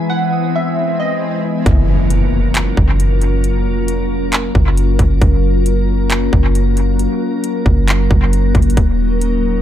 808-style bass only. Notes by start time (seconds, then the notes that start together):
1.66 F#1
2.77 F#1
3.66 F1
4.55 F#1
4.99 F#1
5.22 F#1
6.33 F#1
7.66 F#1
8.11 F#1
8.55 F#1
8.77 D#1